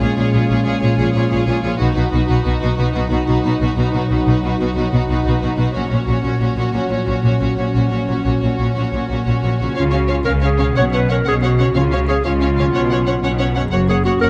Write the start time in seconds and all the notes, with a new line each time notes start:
Already playing: A#2 F3 G#3 C#4 G#4 C#5 F5
0.00 A#1 A#2 F4 G#4 C#5
0.16 A#1 A#2 F4 G#4 C#5
0.33 A#1 A#2 F4 G#4 C#5
0.49 A#1 A#2 F4 G#4 C#5
0.65 A#1 A#2 F4 G#4 C#5
0.82 A#1 A#2 F3 F4 G#4 C#5
0.97 A#1 A#2 F4 G#4 C#5
1.14 A#1 A#2 F4 G#4 C#5
1.30 A#1 A#2 F4 G#4 C#5
1.46 A#1 A#2 F4 G#4 C#5 F5
1.63 A#1 A#2 F4 G#4 C#5
1.78 B1 B2 F#3 D#4 F#4 B4
1.95 B1 B2 D#4 F#4 B4
2.12 B1 B2 D#4 F#4 B4
2.28 B1 B2 D#4 F#4 B4
2.44 B1 B2 D#4 F#4 B4 D#5
2.61 B1 B2 D#4 F#4 B4
2.77 B1 B2 F#3 D#4 F#4 B4
2.93 B1 B2 D#4 F#4 B4
3.10 B1 B2 D#4 F#4 B4
3.27 B1 B2 D#4 F#4 B4
3.43 B1 B2 D#4 F#4 B4 D#5
3.60 B1 B2 D#4 F#4 B4
3.76 B1 B2 D#4 F#4 B4
3.92 B1 B2 D#4 F#4 B4
4.10 B1 B2 D#4 F#4 B4
4.26 B1 B2 D#4 F#4 B4
4.42 B1 B2 D#4 F#4 B4 D#5
4.58 B1 B2 D#4 F#4 B4
4.75 B1 B2 F#3 D#4 F#4 B4
4.92 B1 B2 D#4 F#4 B4
5.09 B1 B2 D#4 F#4 B4
5.25 B1 B2 D#4 F#4 B4
5.41 B1 B2 D#4 F#4 B4 D#5
5.57 B1 B2 D#4 F#4 B4
5.73 A#1 A#2 F#3 C#4 F#4 C#5
5.90 A#1 A#2 C#4 F#4 C#5
6.07 A#1 A#2 C#4 F#4 C#5
6.23 A#1 A#2 C#4 F#4 C#5
6.40 A#1 A#2 C#4 F#4 C#5
6.56 A#1 A#2 C#4 F#4 C#5
6.73 A#1 A#2 C#4 F#4 C#5
6.90 A#1 A#2 C#4 F#4 C#5
7.07 A#1 A#2 C#4 F#4 C#5
7.23 A#1 A#2 C#4 F#4 C#5
7.40 A#1 A#2 C#4 F#4 C#5
7.57 A#1 A#2 C#4 F#4 C#5
7.74 A#1 A#2 C#4 F#4 C#5
7.90 A#1 A#2 C#4 F#4 C#5
8.07 A#1 A#2 C#4 F#4 C#5
8.24 A#1 A#2 C#4 F#4 C#5
8.41 A#1 A#2 C#4 F#4 C#5
8.57 A#1 A#2 C#4 F#4 C#5
8.75 A#1 A#2 C#4 F#4 C#5
8.92 A#1 A#2 C#4 F#4 C#5
9.10 A#1 A#2 C#4 F#4 C#5
9.26 A#1 A#2 C#4 F#4 C#5
9.42 A#1 A#2 C#4 F#4 C#5
9.59 A#1 A#2 C#3 C#4 F#4 C#5
9.64 C#4
9.68 F4
9.73 C#2 F4 C#5 F5
9.77 C#3 C#4
9.91 C#4 F#4 C#5 F5
10.08 C#4 F4 C#5 F5
10.24 C#2 C#3 C#4 A#4 C#5 F5
10.42 C#4 G#4 C#5 F5
10.58 B2 C#4 C#5 F5
10.63 C#4
10.67 F#4
10.72 C#5
10.76 B1 B2 C#4 C#5 F#5
10.93 C#4 B4 C#5 F#5
11.09 C#4 A#4 C#5 F#5
11.26 B1 B2 C#4 G#4 C#5 F#5
11.42 C#4 F#4 C#5 F#5
11.57 C#3 C#4 F#5
11.61 C#4 C#5
11.66 F4
11.70 C#5
11.75 C#2 C#3 C#4 F4 C#5 F5
11.92 C#4 F#4 C#5 F5
12.08 C#4 G#4 C#5 F5
12.25 C#2 C#3 C#4 F4 C#5 F5
12.41 C#4 C#5 F5
12.56 B2 C#4 C#5 F5
12.60 C#4
12.65 F#3
12.69 C#5
12.74 B1 B2 C#4 C#5 F#5
12.90 C#4 C#5 F#5
13.06 C#4 C#5 F#5
13.23 B1 B2 C#4 C#5 F#5
13.39 C#4 C#5 F#5
13.54 F#2 C#4 C#5 F#5
13.59 C#4
13.63 G#4
13.68 A#4
13.72 F#1 F#2 A#3 F#4 C#5 F#5
13.89 A#3 G#4 C#5 F#5
14.05 A#3 F#4 C#5 F#5
14.21 F#1 F#2 A#3 A#4 C#5 F#5